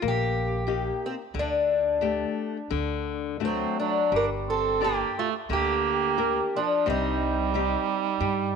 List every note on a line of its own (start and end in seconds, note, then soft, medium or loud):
0.02 0.88 A#1 medium
0.02 0.66 A#3 medium
0.08 1.07 G4 medium
0.67 1.20 A#3 soft
0.67 1.21 D#4 soft
0.67 1.21 G4 soft
1.06 1.14 C4 medium
1.34 2.22 D2 medium
1.34 2.00 D3 medium
1.39 3.44 D4 medium
2.01 2.56 A3 soft
2.01 2.57 D4 soft
2.01 2.57 G4 soft
2.71 3.62 D2 medium
2.71 3.39 D3 medium
3.40 3.97 A3 soft
3.40 3.97 D4 soft
3.40 3.97 F#4 soft
3.45 3.76 F#3 medium
3.45 3.79 C4 medium
3.80 4.11 F#3 medium
3.80 4.14 D4 medium
4.12 5.01 G1 medium
4.12 4.78 G3 medium
4.12 4.30 D4 medium
4.16 4.25 A#4 medium
4.48 4.79 C4 medium
4.48 4.83 A4 medium
4.81 5.14 A#3 medium
4.81 5.35 D4 soft
4.81 5.36 G4 soft
4.81 5.17 G4 medium
4.81 5.36 D5 soft
5.19 5.33 A3 medium
5.19 5.28 F4 medium
5.49 6.39 D2 medium
5.49 6.16 D3 medium
5.49 6.50 A#3 medium
5.49 6.57 G4 medium
6.18 6.73 D4 soft
6.18 6.73 G4 soft
6.18 6.73 A#4 soft
6.56 6.86 F3 medium
6.56 6.89 D4 medium
6.86 7.74 C2 medium
6.86 7.52 C3 medium
6.86 8.56 G3 medium
6.86 8.56 D#4 medium
7.54 8.07 C4 soft
7.54 8.07 D#4 soft
7.54 8.08 G4 soft
8.20 8.56 G2 medium
8.20 8.56 G3 medium